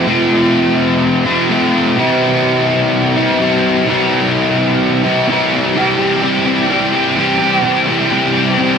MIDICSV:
0, 0, Header, 1, 2, 480
1, 0, Start_track
1, 0, Tempo, 472441
1, 71, Time_signature, 4, 2, 24, 8
1, 8920, End_track
2, 0, Start_track
2, 0, Title_t, "Overdriven electric guitar"
2, 0, Program_c, 0, 29
2, 62, Note_on_c, 0, 41, 88
2, 64, Note_on_c, 0, 48, 80
2, 72, Note_on_c, 0, 53, 90
2, 79, Note_on_c, 0, 57, 92
2, 84, Note_on_c, 0, 60, 92
2, 93, Note_on_c, 0, 65, 97
2, 1257, Note_off_c, 0, 41, 0
2, 1258, Note_off_c, 0, 48, 0
2, 1259, Note_off_c, 0, 65, 0
2, 1262, Note_off_c, 0, 53, 0
2, 1271, Note_on_c, 0, 65, 83
2, 1273, Note_off_c, 0, 60, 0
2, 1277, Note_on_c, 0, 60, 74
2, 1279, Note_off_c, 0, 57, 0
2, 1283, Note_on_c, 0, 57, 71
2, 1293, Note_on_c, 0, 53, 64
2, 1295, Note_on_c, 0, 48, 72
2, 1303, Note_on_c, 0, 41, 61
2, 1500, Note_off_c, 0, 65, 0
2, 1506, Note_off_c, 0, 41, 0
2, 1511, Note_off_c, 0, 53, 0
2, 1512, Note_off_c, 0, 48, 0
2, 1518, Note_on_c, 0, 41, 66
2, 1527, Note_on_c, 0, 48, 72
2, 1530, Note_on_c, 0, 53, 74
2, 1531, Note_off_c, 0, 57, 0
2, 1535, Note_on_c, 0, 57, 80
2, 1538, Note_off_c, 0, 60, 0
2, 1542, Note_on_c, 0, 60, 78
2, 1549, Note_on_c, 0, 65, 73
2, 1985, Note_off_c, 0, 41, 0
2, 1989, Note_off_c, 0, 48, 0
2, 1991, Note_off_c, 0, 53, 0
2, 1999, Note_on_c, 0, 48, 84
2, 2000, Note_off_c, 0, 65, 0
2, 2006, Note_on_c, 0, 52, 80
2, 2014, Note_off_c, 0, 57, 0
2, 2018, Note_on_c, 0, 55, 82
2, 2021, Note_off_c, 0, 60, 0
2, 2025, Note_on_c, 0, 60, 104
2, 2030, Note_on_c, 0, 64, 92
2, 3196, Note_off_c, 0, 64, 0
2, 3200, Note_on_c, 0, 64, 84
2, 3209, Note_off_c, 0, 60, 0
2, 3213, Note_on_c, 0, 60, 69
2, 3219, Note_off_c, 0, 55, 0
2, 3221, Note_off_c, 0, 52, 0
2, 3223, Note_on_c, 0, 55, 70
2, 3225, Note_on_c, 0, 52, 73
2, 3228, Note_off_c, 0, 48, 0
2, 3232, Note_on_c, 0, 48, 60
2, 3439, Note_off_c, 0, 48, 0
2, 3443, Note_on_c, 0, 48, 71
2, 3448, Note_off_c, 0, 52, 0
2, 3452, Note_on_c, 0, 52, 73
2, 3454, Note_off_c, 0, 55, 0
2, 3458, Note_on_c, 0, 55, 80
2, 3459, Note_off_c, 0, 60, 0
2, 3463, Note_on_c, 0, 60, 81
2, 3471, Note_off_c, 0, 64, 0
2, 3475, Note_on_c, 0, 64, 74
2, 3913, Note_off_c, 0, 48, 0
2, 3917, Note_on_c, 0, 48, 82
2, 3923, Note_off_c, 0, 52, 0
2, 3927, Note_on_c, 0, 52, 93
2, 3931, Note_off_c, 0, 55, 0
2, 3935, Note_on_c, 0, 55, 90
2, 3939, Note_off_c, 0, 60, 0
2, 3943, Note_on_c, 0, 60, 90
2, 3947, Note_off_c, 0, 64, 0
2, 3951, Note_on_c, 0, 64, 89
2, 5103, Note_off_c, 0, 64, 0
2, 5105, Note_off_c, 0, 48, 0
2, 5110, Note_off_c, 0, 52, 0
2, 5114, Note_off_c, 0, 55, 0
2, 5115, Note_off_c, 0, 60, 0
2, 5115, Note_on_c, 0, 64, 83
2, 5128, Note_on_c, 0, 60, 69
2, 5136, Note_on_c, 0, 55, 71
2, 5145, Note_on_c, 0, 52, 62
2, 5153, Note_on_c, 0, 48, 63
2, 5344, Note_off_c, 0, 64, 0
2, 5348, Note_off_c, 0, 48, 0
2, 5350, Note_off_c, 0, 60, 0
2, 5354, Note_off_c, 0, 55, 0
2, 5359, Note_off_c, 0, 52, 0
2, 5360, Note_on_c, 0, 48, 73
2, 5371, Note_on_c, 0, 52, 74
2, 5381, Note_on_c, 0, 55, 66
2, 5386, Note_on_c, 0, 60, 73
2, 5395, Note_on_c, 0, 64, 76
2, 5826, Note_off_c, 0, 48, 0
2, 5831, Note_off_c, 0, 52, 0
2, 5836, Note_off_c, 0, 55, 0
2, 5839, Note_off_c, 0, 60, 0
2, 5843, Note_off_c, 0, 64, 0
2, 5844, Note_on_c, 0, 48, 99
2, 5852, Note_on_c, 0, 52, 98
2, 5860, Note_on_c, 0, 55, 90
2, 5866, Note_on_c, 0, 60, 112
2, 5870, Note_on_c, 0, 67, 104
2, 6072, Note_off_c, 0, 67, 0
2, 6076, Note_on_c, 0, 67, 75
2, 6088, Note_off_c, 0, 60, 0
2, 6092, Note_on_c, 0, 60, 60
2, 6103, Note_off_c, 0, 55, 0
2, 6107, Note_on_c, 0, 55, 57
2, 6310, Note_off_c, 0, 52, 0
2, 6314, Note_on_c, 0, 52, 67
2, 6321, Note_off_c, 0, 55, 0
2, 6325, Note_on_c, 0, 55, 81
2, 6334, Note_off_c, 0, 60, 0
2, 6338, Note_on_c, 0, 60, 80
2, 6341, Note_off_c, 0, 67, 0
2, 6345, Note_on_c, 0, 67, 84
2, 6545, Note_off_c, 0, 67, 0
2, 6549, Note_on_c, 0, 67, 70
2, 6563, Note_off_c, 0, 60, 0
2, 6568, Note_on_c, 0, 60, 78
2, 6573, Note_off_c, 0, 55, 0
2, 6577, Note_on_c, 0, 55, 60
2, 6785, Note_off_c, 0, 48, 0
2, 6789, Note_on_c, 0, 48, 98
2, 6795, Note_off_c, 0, 52, 0
2, 6799, Note_on_c, 0, 52, 92
2, 6802, Note_off_c, 0, 55, 0
2, 6806, Note_on_c, 0, 55, 95
2, 6807, Note_off_c, 0, 60, 0
2, 6811, Note_on_c, 0, 60, 99
2, 6818, Note_off_c, 0, 67, 0
2, 6822, Note_on_c, 0, 67, 103
2, 7031, Note_off_c, 0, 67, 0
2, 7035, Note_on_c, 0, 67, 77
2, 7047, Note_off_c, 0, 60, 0
2, 7051, Note_on_c, 0, 60, 60
2, 7058, Note_off_c, 0, 55, 0
2, 7062, Note_on_c, 0, 55, 55
2, 7264, Note_off_c, 0, 52, 0
2, 7268, Note_on_c, 0, 52, 75
2, 7275, Note_off_c, 0, 55, 0
2, 7280, Note_on_c, 0, 55, 76
2, 7287, Note_off_c, 0, 60, 0
2, 7291, Note_on_c, 0, 60, 75
2, 7295, Note_off_c, 0, 67, 0
2, 7299, Note_on_c, 0, 67, 81
2, 7498, Note_off_c, 0, 67, 0
2, 7502, Note_on_c, 0, 67, 79
2, 7517, Note_off_c, 0, 60, 0
2, 7521, Note_on_c, 0, 60, 66
2, 7531, Note_off_c, 0, 55, 0
2, 7535, Note_on_c, 0, 55, 63
2, 7737, Note_off_c, 0, 48, 0
2, 7741, Note_on_c, 0, 48, 92
2, 7746, Note_off_c, 0, 52, 0
2, 7750, Note_on_c, 0, 52, 98
2, 7754, Note_off_c, 0, 55, 0
2, 7758, Note_on_c, 0, 55, 105
2, 7762, Note_off_c, 0, 60, 0
2, 7766, Note_on_c, 0, 60, 104
2, 7768, Note_off_c, 0, 67, 0
2, 7772, Note_on_c, 0, 67, 107
2, 7982, Note_off_c, 0, 67, 0
2, 7986, Note_on_c, 0, 67, 67
2, 8000, Note_off_c, 0, 60, 0
2, 8004, Note_on_c, 0, 60, 61
2, 8014, Note_off_c, 0, 55, 0
2, 8018, Note_on_c, 0, 55, 56
2, 8221, Note_off_c, 0, 52, 0
2, 8225, Note_on_c, 0, 52, 72
2, 8235, Note_off_c, 0, 55, 0
2, 8239, Note_on_c, 0, 55, 77
2, 8247, Note_off_c, 0, 60, 0
2, 8251, Note_on_c, 0, 60, 77
2, 8253, Note_off_c, 0, 67, 0
2, 8257, Note_on_c, 0, 67, 77
2, 8470, Note_off_c, 0, 67, 0
2, 8474, Note_on_c, 0, 67, 83
2, 8481, Note_off_c, 0, 60, 0
2, 8485, Note_on_c, 0, 60, 79
2, 8497, Note_off_c, 0, 55, 0
2, 8501, Note_on_c, 0, 55, 65
2, 8707, Note_off_c, 0, 48, 0
2, 8711, Note_on_c, 0, 48, 93
2, 8714, Note_off_c, 0, 52, 0
2, 8718, Note_off_c, 0, 55, 0
2, 8718, Note_on_c, 0, 52, 87
2, 8722, Note_on_c, 0, 55, 91
2, 8730, Note_off_c, 0, 60, 0
2, 8734, Note_on_c, 0, 60, 104
2, 8737, Note_off_c, 0, 67, 0
2, 8741, Note_on_c, 0, 67, 92
2, 8920, Note_off_c, 0, 48, 0
2, 8920, Note_off_c, 0, 52, 0
2, 8920, Note_off_c, 0, 55, 0
2, 8920, Note_off_c, 0, 60, 0
2, 8920, Note_off_c, 0, 67, 0
2, 8920, End_track
0, 0, End_of_file